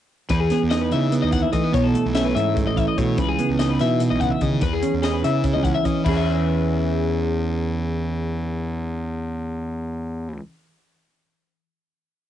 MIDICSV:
0, 0, Header, 1, 5, 480
1, 0, Start_track
1, 0, Key_signature, 4, "major"
1, 0, Tempo, 409836
1, 372, Time_signature, 7, 3, 24, 8
1, 14396, End_track
2, 0, Start_track
2, 0, Title_t, "Clean electric guitar"
2, 0, Program_c, 0, 27
2, 354, Note_on_c, 0, 71, 75
2, 471, Note_off_c, 0, 71, 0
2, 471, Note_on_c, 0, 68, 62
2, 721, Note_off_c, 0, 68, 0
2, 830, Note_on_c, 0, 75, 72
2, 953, Note_on_c, 0, 71, 58
2, 961, Note_off_c, 0, 75, 0
2, 1080, Note_on_c, 0, 76, 65
2, 1083, Note_off_c, 0, 71, 0
2, 1326, Note_off_c, 0, 76, 0
2, 1432, Note_on_c, 0, 75, 61
2, 1551, Note_off_c, 0, 75, 0
2, 1555, Note_on_c, 0, 78, 66
2, 1664, Note_off_c, 0, 78, 0
2, 1664, Note_on_c, 0, 76, 59
2, 1782, Note_off_c, 0, 76, 0
2, 1787, Note_on_c, 0, 75, 62
2, 2033, Note_off_c, 0, 75, 0
2, 2038, Note_on_c, 0, 73, 86
2, 2151, Note_on_c, 0, 69, 59
2, 2165, Note_off_c, 0, 73, 0
2, 2402, Note_off_c, 0, 69, 0
2, 2518, Note_on_c, 0, 76, 75
2, 2632, Note_on_c, 0, 71, 54
2, 2646, Note_off_c, 0, 76, 0
2, 2752, Note_on_c, 0, 76, 67
2, 2763, Note_off_c, 0, 71, 0
2, 3003, Note_off_c, 0, 76, 0
2, 3127, Note_on_c, 0, 75, 61
2, 3245, Note_off_c, 0, 75, 0
2, 3245, Note_on_c, 0, 76, 67
2, 3366, Note_off_c, 0, 76, 0
2, 3371, Note_on_c, 0, 75, 62
2, 3487, Note_off_c, 0, 75, 0
2, 3487, Note_on_c, 0, 73, 66
2, 3728, Note_off_c, 0, 73, 0
2, 3728, Note_on_c, 0, 71, 84
2, 3847, Note_on_c, 0, 68, 60
2, 3851, Note_off_c, 0, 71, 0
2, 4091, Note_off_c, 0, 68, 0
2, 4206, Note_on_c, 0, 75, 70
2, 4327, Note_on_c, 0, 71, 58
2, 4331, Note_off_c, 0, 75, 0
2, 4452, Note_off_c, 0, 71, 0
2, 4457, Note_on_c, 0, 76, 69
2, 4697, Note_off_c, 0, 76, 0
2, 4807, Note_on_c, 0, 75, 63
2, 4918, Note_off_c, 0, 75, 0
2, 4918, Note_on_c, 0, 78, 66
2, 5048, Note_off_c, 0, 78, 0
2, 5048, Note_on_c, 0, 76, 59
2, 5174, Note_off_c, 0, 76, 0
2, 5174, Note_on_c, 0, 75, 65
2, 5417, Note_off_c, 0, 75, 0
2, 5419, Note_on_c, 0, 71, 82
2, 5539, Note_off_c, 0, 71, 0
2, 5541, Note_on_c, 0, 68, 65
2, 5781, Note_off_c, 0, 68, 0
2, 5902, Note_on_c, 0, 75, 70
2, 6012, Note_on_c, 0, 71, 54
2, 6021, Note_off_c, 0, 75, 0
2, 6136, Note_off_c, 0, 71, 0
2, 6139, Note_on_c, 0, 76, 66
2, 6380, Note_off_c, 0, 76, 0
2, 6482, Note_on_c, 0, 75, 57
2, 6596, Note_off_c, 0, 75, 0
2, 6596, Note_on_c, 0, 78, 62
2, 6725, Note_off_c, 0, 78, 0
2, 6730, Note_on_c, 0, 76, 58
2, 6848, Note_off_c, 0, 76, 0
2, 6848, Note_on_c, 0, 75, 59
2, 7075, Note_off_c, 0, 75, 0
2, 7079, Note_on_c, 0, 64, 62
2, 7127, Note_on_c, 0, 68, 63
2, 7176, Note_on_c, 0, 71, 58
2, 7217, Note_off_c, 0, 64, 0
2, 7221, Note_on_c, 0, 76, 62
2, 12185, Note_off_c, 0, 68, 0
2, 12209, Note_off_c, 0, 71, 0
2, 12232, Note_off_c, 0, 76, 0
2, 14396, End_track
3, 0, Start_track
3, 0, Title_t, "Clean electric guitar"
3, 0, Program_c, 1, 27
3, 346, Note_on_c, 1, 40, 66
3, 604, Note_on_c, 1, 59, 53
3, 833, Note_on_c, 1, 63, 54
3, 1061, Note_on_c, 1, 52, 53
3, 1307, Note_off_c, 1, 59, 0
3, 1312, Note_on_c, 1, 59, 57
3, 1530, Note_off_c, 1, 52, 0
3, 1535, Note_on_c, 1, 52, 52
3, 1778, Note_off_c, 1, 59, 0
3, 1783, Note_on_c, 1, 57, 51
3, 1917, Note_off_c, 1, 57, 0
3, 1917, Note_on_c, 1, 59, 47
3, 2014, Note_off_c, 1, 63, 0
3, 2019, Note_on_c, 1, 47, 74
3, 2039, Note_off_c, 1, 40, 0
3, 2045, Note_off_c, 1, 59, 0
3, 2270, Note_on_c, 1, 57, 53
3, 2522, Note_on_c, 1, 61, 55
3, 2747, Note_off_c, 1, 52, 0
3, 2752, Note_on_c, 1, 52, 56
3, 2756, Note_off_c, 1, 47, 0
3, 2965, Note_off_c, 1, 57, 0
3, 2979, Note_on_c, 1, 57, 53
3, 3233, Note_off_c, 1, 52, 0
3, 3238, Note_on_c, 1, 52, 57
3, 3477, Note_off_c, 1, 57, 0
3, 3493, Note_on_c, 1, 57, 53
3, 3727, Note_on_c, 1, 49, 67
3, 3734, Note_off_c, 1, 57, 0
3, 3971, Note_on_c, 1, 59, 55
3, 4006, Note_off_c, 1, 61, 0
3, 4206, Note_on_c, 1, 63, 54
3, 4435, Note_off_c, 1, 52, 0
3, 4440, Note_on_c, 1, 52, 58
3, 4452, Note_off_c, 1, 49, 0
3, 4691, Note_on_c, 1, 47, 60
3, 4921, Note_off_c, 1, 47, 0
3, 4926, Note_on_c, 1, 49, 56
3, 5159, Note_off_c, 1, 49, 0
3, 5163, Note_on_c, 1, 51, 55
3, 5385, Note_off_c, 1, 63, 0
3, 5409, Note_on_c, 1, 40, 71
3, 5411, Note_off_c, 1, 51, 0
3, 5646, Note_off_c, 1, 59, 0
3, 5651, Note_on_c, 1, 61, 56
3, 5881, Note_on_c, 1, 68, 62
3, 6102, Note_off_c, 1, 52, 0
3, 6116, Note_on_c, 1, 52, 53
3, 6356, Note_off_c, 1, 61, 0
3, 6370, Note_on_c, 1, 61, 52
3, 6596, Note_off_c, 1, 52, 0
3, 6610, Note_on_c, 1, 52, 56
3, 6826, Note_off_c, 1, 61, 0
3, 6840, Note_on_c, 1, 61, 50
3, 7063, Note_off_c, 1, 61, 0
3, 7064, Note_off_c, 1, 68, 0
3, 7073, Note_off_c, 1, 40, 0
3, 7087, Note_on_c, 1, 40, 61
3, 7095, Note_off_c, 1, 52, 0
3, 7109, Note_on_c, 1, 52, 58
3, 7131, Note_on_c, 1, 61, 56
3, 7161, Note_on_c, 1, 68, 55
3, 12212, Note_off_c, 1, 40, 0
3, 12223, Note_off_c, 1, 52, 0
3, 12234, Note_off_c, 1, 61, 0
3, 12249, Note_off_c, 1, 68, 0
3, 14396, End_track
4, 0, Start_track
4, 0, Title_t, "Fingered electric bass"
4, 0, Program_c, 2, 33
4, 354, Note_on_c, 2, 40, 91
4, 587, Note_off_c, 2, 40, 0
4, 738, Note_on_c, 2, 40, 70
4, 1071, Note_off_c, 2, 40, 0
4, 1095, Note_on_c, 2, 49, 72
4, 1430, Note_off_c, 2, 49, 0
4, 1449, Note_on_c, 2, 39, 72
4, 1675, Note_off_c, 2, 39, 0
4, 1802, Note_on_c, 2, 52, 76
4, 2031, Note_off_c, 2, 52, 0
4, 2046, Note_on_c, 2, 35, 91
4, 2273, Note_off_c, 2, 35, 0
4, 2407, Note_on_c, 2, 35, 74
4, 2746, Note_off_c, 2, 35, 0
4, 2760, Note_on_c, 2, 44, 84
4, 3102, Note_off_c, 2, 44, 0
4, 3130, Note_on_c, 2, 33, 69
4, 3356, Note_off_c, 2, 33, 0
4, 3492, Note_on_c, 2, 47, 73
4, 3718, Note_off_c, 2, 47, 0
4, 3731, Note_on_c, 2, 37, 95
4, 3957, Note_off_c, 2, 37, 0
4, 4087, Note_on_c, 2, 37, 71
4, 4428, Note_off_c, 2, 37, 0
4, 4460, Note_on_c, 2, 47, 75
4, 4795, Note_off_c, 2, 47, 0
4, 4817, Note_on_c, 2, 35, 75
4, 5042, Note_off_c, 2, 35, 0
4, 5177, Note_on_c, 2, 49, 75
4, 5402, Note_off_c, 2, 49, 0
4, 5413, Note_on_c, 2, 40, 98
4, 5640, Note_off_c, 2, 40, 0
4, 5780, Note_on_c, 2, 40, 69
4, 6116, Note_off_c, 2, 40, 0
4, 6145, Note_on_c, 2, 49, 78
4, 6480, Note_off_c, 2, 49, 0
4, 6508, Note_on_c, 2, 37, 72
4, 6729, Note_off_c, 2, 37, 0
4, 6858, Note_on_c, 2, 52, 72
4, 7084, Note_off_c, 2, 52, 0
4, 7096, Note_on_c, 2, 40, 79
4, 12169, Note_off_c, 2, 40, 0
4, 14396, End_track
5, 0, Start_track
5, 0, Title_t, "Drums"
5, 342, Note_on_c, 9, 42, 74
5, 349, Note_on_c, 9, 36, 99
5, 459, Note_off_c, 9, 42, 0
5, 466, Note_off_c, 9, 36, 0
5, 585, Note_on_c, 9, 42, 54
5, 593, Note_on_c, 9, 38, 30
5, 702, Note_off_c, 9, 42, 0
5, 710, Note_off_c, 9, 38, 0
5, 825, Note_on_c, 9, 42, 68
5, 834, Note_on_c, 9, 38, 90
5, 943, Note_off_c, 9, 42, 0
5, 951, Note_off_c, 9, 38, 0
5, 1072, Note_on_c, 9, 42, 57
5, 1190, Note_off_c, 9, 42, 0
5, 1314, Note_on_c, 9, 42, 73
5, 1431, Note_off_c, 9, 42, 0
5, 1551, Note_on_c, 9, 42, 56
5, 1556, Note_on_c, 9, 36, 72
5, 1559, Note_on_c, 9, 38, 31
5, 1668, Note_off_c, 9, 42, 0
5, 1673, Note_off_c, 9, 36, 0
5, 1676, Note_off_c, 9, 38, 0
5, 1790, Note_on_c, 9, 42, 58
5, 1796, Note_on_c, 9, 36, 62
5, 1907, Note_off_c, 9, 42, 0
5, 1913, Note_off_c, 9, 36, 0
5, 2040, Note_on_c, 9, 36, 101
5, 2040, Note_on_c, 9, 42, 77
5, 2157, Note_off_c, 9, 36, 0
5, 2157, Note_off_c, 9, 42, 0
5, 2284, Note_on_c, 9, 42, 57
5, 2401, Note_off_c, 9, 42, 0
5, 2515, Note_on_c, 9, 42, 70
5, 2523, Note_on_c, 9, 38, 96
5, 2632, Note_off_c, 9, 42, 0
5, 2640, Note_off_c, 9, 38, 0
5, 2770, Note_on_c, 9, 42, 52
5, 2887, Note_off_c, 9, 42, 0
5, 3008, Note_on_c, 9, 36, 97
5, 3008, Note_on_c, 9, 42, 72
5, 3125, Note_off_c, 9, 36, 0
5, 3125, Note_off_c, 9, 42, 0
5, 3249, Note_on_c, 9, 36, 69
5, 3251, Note_on_c, 9, 42, 54
5, 3366, Note_off_c, 9, 36, 0
5, 3369, Note_off_c, 9, 42, 0
5, 3489, Note_on_c, 9, 36, 64
5, 3493, Note_on_c, 9, 42, 54
5, 3606, Note_off_c, 9, 36, 0
5, 3610, Note_off_c, 9, 42, 0
5, 3721, Note_on_c, 9, 42, 67
5, 3727, Note_on_c, 9, 36, 101
5, 3838, Note_off_c, 9, 42, 0
5, 3845, Note_off_c, 9, 36, 0
5, 3966, Note_on_c, 9, 42, 56
5, 4083, Note_off_c, 9, 42, 0
5, 4208, Note_on_c, 9, 42, 72
5, 4216, Note_on_c, 9, 38, 93
5, 4325, Note_off_c, 9, 42, 0
5, 4333, Note_off_c, 9, 38, 0
5, 4443, Note_on_c, 9, 42, 51
5, 4451, Note_on_c, 9, 38, 29
5, 4560, Note_off_c, 9, 42, 0
5, 4568, Note_off_c, 9, 38, 0
5, 4688, Note_on_c, 9, 42, 79
5, 4805, Note_off_c, 9, 42, 0
5, 4929, Note_on_c, 9, 36, 68
5, 4929, Note_on_c, 9, 42, 57
5, 5046, Note_off_c, 9, 36, 0
5, 5046, Note_off_c, 9, 42, 0
5, 5165, Note_on_c, 9, 42, 55
5, 5170, Note_on_c, 9, 36, 67
5, 5282, Note_off_c, 9, 42, 0
5, 5287, Note_off_c, 9, 36, 0
5, 5403, Note_on_c, 9, 42, 77
5, 5410, Note_on_c, 9, 36, 93
5, 5520, Note_off_c, 9, 42, 0
5, 5527, Note_off_c, 9, 36, 0
5, 5651, Note_on_c, 9, 42, 60
5, 5768, Note_off_c, 9, 42, 0
5, 5892, Note_on_c, 9, 42, 74
5, 5900, Note_on_c, 9, 38, 88
5, 6009, Note_off_c, 9, 42, 0
5, 6017, Note_off_c, 9, 38, 0
5, 6140, Note_on_c, 9, 42, 56
5, 6258, Note_off_c, 9, 42, 0
5, 6369, Note_on_c, 9, 42, 79
5, 6373, Note_on_c, 9, 36, 95
5, 6486, Note_off_c, 9, 42, 0
5, 6490, Note_off_c, 9, 36, 0
5, 6613, Note_on_c, 9, 36, 71
5, 6613, Note_on_c, 9, 42, 55
5, 6730, Note_off_c, 9, 36, 0
5, 6731, Note_off_c, 9, 42, 0
5, 6853, Note_on_c, 9, 36, 59
5, 6854, Note_on_c, 9, 42, 53
5, 6970, Note_off_c, 9, 36, 0
5, 6971, Note_off_c, 9, 42, 0
5, 7095, Note_on_c, 9, 36, 94
5, 7096, Note_on_c, 9, 49, 76
5, 7212, Note_off_c, 9, 36, 0
5, 7213, Note_off_c, 9, 49, 0
5, 14396, End_track
0, 0, End_of_file